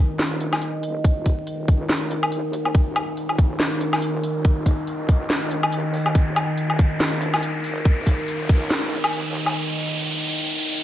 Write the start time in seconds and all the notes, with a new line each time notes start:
Already playing: D#3, riser
0.00 D#1
0.19 snare, closed hi-hat
0.41 closed hi-hat
0.53 snare, low woodblock
0.62 closed hi-hat
0.83 F#1, closed hi-hat
1.04 D#1, kick, closed hi-hat
1.26 kick, closed hi-hat
1.47 closed hi-hat
1.68 C#2, kick, closed hi-hat
1.89 snare, closed hi-hat
2.11 closed hi-hat
2.23 low woodblock
2.32 D#2, closed hi-hat
2.53 closed hi-hat
2.65 low woodblock
2.75 D#1, kick, closed hi-hat
2.96 closed hi-hat, low woodblock
3.17 closed hi-hat
3.29 low woodblock
3.38 D#1, kick, closed hi-hat
3.60 snare, closed hi-hat
3.81 closed hi-hat
3.93 snare, low woodblock
4.02 D#1, closed hi-hat
4.24 closed hi-hat
4.45 D#1, kick, closed hi-hat
4.66 kick, closed hi-hat
4.87 closed hi-hat
5.09 C#2, kick, closed hi-hat
5.30 snare, closed hi-hat
5.51 closed hi-hat
5.63 low woodblock
5.72 D#2, closed hi-hat
5.94 open hi-hat
6.06 low woodblock
6.15 D#1, kick, closed hi-hat
6.36 closed hi-hat, low woodblock
6.58 closed hi-hat
6.70 low woodblock
6.79 D#1, kick, closed hi-hat
7.00 snare, closed hi-hat
7.22 closed hi-hat
7.34 snare, low woodblock
7.43 closed hi-hat
7.64 F#1, open hi-hat
7.85 D#1, kick, closed hi-hat
8.07 kick, closed hi-hat
8.28 closed hi-hat
8.49 C#2, kick, closed hi-hat
8.71 snare, closed hi-hat
8.92 closed hi-hat
9.04 low woodblock
9.13 D#2, closed hi-hat
9.34 open hi-hat
9.46 low woodblock